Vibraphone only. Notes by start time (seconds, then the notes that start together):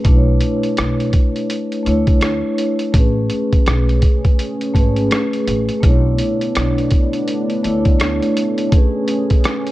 0.04 A3 D4 E4
0.10 B4
0.16 C#5
1.83 A3 D4 E4
1.89 C#5
2.20 A3 D4 E4
2.25 C#5
2.93 A3 C#4 G#4
2.98 B4
4.74 A3 C#4 G#4
4.79 B4
5.09 A3 C#4 G#4
5.14 B4
5.80 A3 D4 E4
5.86 C#5
7.63 A3 D4 E4
7.68 C#5
7.99 A3 D4 E4
8.04 C#5
8.70 A3 C#4 G#4
8.75 B4